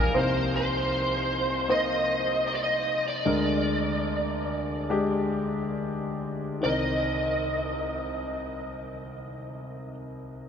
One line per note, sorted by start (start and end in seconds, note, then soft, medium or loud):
0.00 0.13 A#1 medium
0.00 0.17 F3 medium
0.00 0.18 G3 medium
0.00 0.15 D#4 medium
0.00 0.14 A#4 medium
0.00 0.18 D5 medium
0.00 0.18 D#5 medium
0.00 0.18 F5 medium
0.00 0.18 G5 medium
0.00 0.13 G#5 medium
0.14 3.21 C2 soft
0.14 3.21 C3 soft
0.14 1.60 A#3 medium
0.14 1.60 D#4 medium
0.14 1.60 C5 medium
0.18 0.54 C5 medium
0.56 1.70 C5 medium
1.68 3.17 A#3 medium
1.68 3.18 D#4 soft
1.68 3.18 C5 medium
1.68 2.46 D#5 medium
2.47 2.54 D#5 medium
2.54 2.61 D5 medium
2.63 3.07 D#5 medium
3.07 5.71 D5 medium
3.25 6.59 D2 soft
3.25 6.58 D3 soft
3.25 4.81 G#3 medium
3.25 4.81 D4 medium
3.25 4.81 A#4 medium
4.90 6.54 G#3 medium
4.90 6.54 D4 medium
4.90 6.54 G4 medium
6.60 9.92 C2 soft
6.60 9.90 D#3 medium
6.60 9.93 C4 soft
6.60 9.94 D#5 medium
6.65 9.95 A#4 medium